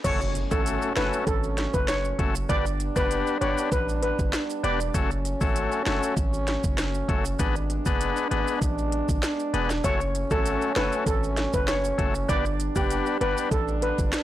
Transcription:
0.04 F#1 F#3 A3 C#4 F#4 A4 C#5, kick, closed hi-hat, crash, impact, maracas
0.21 maracas
0.35 closed hi-hat, maracas
0.51 G#1 A3 C#4 F#4 A4, kick, maracas
0.66 closed hi-hat, maracas
0.82 maracas
0.96 F#1 A3 C#4 F#4 A4 B4, snare, closed hi-hat
1.13 maracas
1.27 G#1 A4, kick, closed hi-hat, maracas
1.44 maracas
1.58 snare, closed hi-hat
1.74 F#1 B4, kick, maracas
1.88 C#5, cross-stick, snare, closed hi-hat, maracas
2.05 maracas
2.19 F#1 A3 C#4 F#4 A4, kick, closed hi-hat
2.35 maracas
2.49 G1 G3 B3 D4 G4 B4 D5, kick, closed hi-hat, maracas
2.66 maracas
2.80 closed hi-hat, maracas
2.96 F#1 B3 D4 G4 B4, kick, maracas
3.11 closed hi-hat, maracas
3.27 maracas
3.41 G1 B3 D4 G4 B4 C#5, closed hi-hat
3.58 maracas
3.72 A1 B4, kick, closed hi-hat, maracas
3.89 maracas
4.03 B4, closed hi-hat
4.19 G1, kick, maracas
4.33 cross-stick, snare, closed hi-hat, maracas
4.50 maracas
4.64 E1 B3 D4 G4 B4 D5, closed hi-hat
4.80 maracas
4.94 F#1 F#3 A3 C#4 F#4 A4, kick, closed hi-hat, maracas
5.11 maracas
5.25 closed hi-hat, maracas
5.41 G#1 A3 C#4 F#4 A4, kick, maracas
5.56 closed hi-hat, maracas
5.72 maracas
5.86 F#1 A3 C#4 F#4 A4, snare, closed hi-hat
6.03 maracas
6.17 G#1, kick, closed hi-hat, maracas
6.33 maracas
6.48 snare, closed hi-hat
6.64 F#1, kick, maracas
6.78 cross-stick, snare, closed hi-hat, maracas
6.94 maracas
7.09 F#1 A3 C#4 F#4 A4, kick, closed hi-hat
7.25 maracas
7.39 G#1 G#3 B3 D4 G#4 B4, kick, closed hi-hat, maracas
7.56 maracas
7.70 closed hi-hat, maracas
7.86 F#1 B3 D4 G#4 B4, kick, maracas
8.01 closed hi-hat, maracas
8.17 maracas
8.31 G#1 B3 D4 G#4 B4, closed hi-hat
8.48 maracas
8.62 A1, kick, closed hi-hat, maracas
8.78 maracas
8.92 closed hi-hat
9.09 G#1, kick, maracas
9.23 snare, closed hi-hat, maracas
9.40 maracas
9.54 E1 B3 D4 G#4 B4, closed hi-hat
9.70 snare, maracas
9.84 F#1 F#3 A3 C#4 F#4 A4 C#5, kick, closed hi-hat, maracas
10.01 maracas
10.15 closed hi-hat, maracas
10.31 G#1 A3 C#4 F#4 A4, kick, maracas
10.46 closed hi-hat, maracas
10.62 maracas
10.76 F#1 A3 C#4 F#4 A4 B4, snare, closed hi-hat
10.92 maracas
11.06 G#1 A4, kick, closed hi-hat, maracas
11.23 maracas
11.37 snare, closed hi-hat
11.53 F#1 B4, kick, maracas
11.68 C#5, cross-stick, snare, closed hi-hat, maracas
11.84 maracas
11.98 F#1 A3 C#4 F#4 A4, kick, closed hi-hat
12.15 maracas
12.29 G1 G3 B3 D4 G4 B4 D5, kick, closed hi-hat, maracas
12.45 maracas
12.60 closed hi-hat, maracas
12.76 F#1 B3 D4 G4 B4, kick, maracas
12.90 closed hi-hat, maracas
13.06 maracas
13.21 G1 B3 D4 G4 B4, closed hi-hat
13.38 maracas
13.51 A1 A4, kick, closed hi-hat, maracas
13.68 maracas
13.82 B4, closed hi-hat
13.98 G1, kick, maracas
14.13 cross-stick, snare, closed hi-hat, maracas

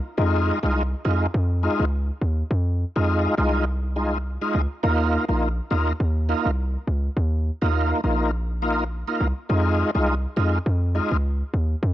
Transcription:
0.17 F2 G#3 D#4 F4
0.63 C2 G#3 D#4 F4
1.05 F2 G#3 D#4 F4
1.34 F2
1.63 G#3 D#4 F4
1.80 C#2
2.21 D#2
2.51 F2
2.96 F2 G#3 D#4 F4
3.38 C2 G#3 D#4 F4
3.96 G#3 D#4 F4
4.41 G#3 D#4 F4
4.55 C#2
4.83 D#2 A#3 D#4 F4
5.29 A#1 A#3 D#4 F4
5.71 D#2 A#3 D#4 F4
6.00 D#2
6.29 A#3 D#4 F4
6.46 C2
6.87 C#2
7.17 D#2
7.62 D#2 A#3 D#4 F4
8.04 A#1 A#3 D#4 F4
8.62 A#3 D#4 F4
9.07 A#3 D#4 F4
9.20 C2
9.49 F2 G#3 D#4 F4
9.95 C2 G#3 D#4 F4
10.37 F2 G#3 D#4 F4
10.66 F2
10.95 G#3 D#4 F4
11.12 C#2
11.54 D#2
11.83 F2

